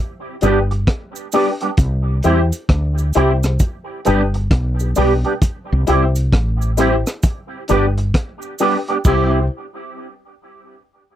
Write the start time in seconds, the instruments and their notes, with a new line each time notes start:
0.41 fretless electric bass G1, clean electric guitar G3 B3 D4 G4, upright piano D4 G4 B4, closed hi-hat, cabasa
0.71 muted clean electric guitar stroke, closed hi-hat
0.87 kick, cross-stick, closed hi-hat
1.16 cabasa
1.32 clean electric guitar G3 B3 D4 G4, upright piano D4 G4 B4, open hi-hat, cabasa
1.61 clean electric guitar G3 B3 D4 G4, closed hi-hat
1.77 fretless electric bass C2, kick, closed hi-hat, cabasa
2.23 fretless electric bass E2, clean electric guitar G3 C4 E4 G4, upright piano E4 G4 C5, closed hi-hat, cabasa
2.52 closed hi-hat, cabasa
2.69 fretless electric bass D2, kick, cross-stick, closed hi-hat
2.98 cabasa
3.13 fretless electric bass C2, clean electric guitar G3 C4 E4 G4, upright piano E4 G4 C5, closed hi-hat, cabasa
3.43 upright piano G4 C5, cross-stick, closed hi-hat, cabasa
3.59 kick, closed hi-hat, cabasa
4.05 fretless electric bass G1, clean electric guitar G3 B3 D4 G4, upright piano D4 G4 B4, closed hi-hat, cabasa
4.34 muted clean electric guitar stroke, closed hi-hat
4.51 fretless electric bass B1, kick, cross-stick, closed hi-hat
4.79 upright piano G4 B4, cabasa
4.96 fretless electric bass B1, clean electric guitar G3 B3 D4 G4, upright piano D4 G4 B4, open hi-hat, cabasa
5.25 clean electric guitar G3 B3 D4 G4, closed hi-hat
5.42 kick, closed hi-hat, cabasa
5.72 fretless electric bass C2
5.87 fretless electric bass C2, clean electric guitar G3 C4 E4 G4, upright piano E4 G4 C5, closed hi-hat, cabasa
6.15 closed hi-hat, cabasa
6.33 fretless electric bass A1, kick, cross-stick, closed hi-hat
6.62 cabasa
6.77 clean electric guitar G3 C4 E4 G4, upright piano E4 G4 C5, cross-stick, closed hi-hat, cabasa
7.07 cross-stick, closed hi-hat, cabasa
7.23 kick, closed hi-hat, cabasa
7.68 fretless electric bass G1, clean electric guitar G3 B3 D4 G4, upright piano D4 G4 B4, closed hi-hat, cabasa
7.98 muted clean electric guitar stroke, closed hi-hat
8.14 kick, cross-stick, closed hi-hat
8.42 cabasa
8.59 clean electric guitar G3 B3 D4 G4, upright piano D4 G4 B4, open hi-hat, cabasa
8.88 clean electric guitar G3 B3 D4 G4, closed hi-hat
9.05 fretless electric bass C2, clean electric guitar G3 C4 E4 G4, upright piano E4 G4 C5, kick, crash, cabasa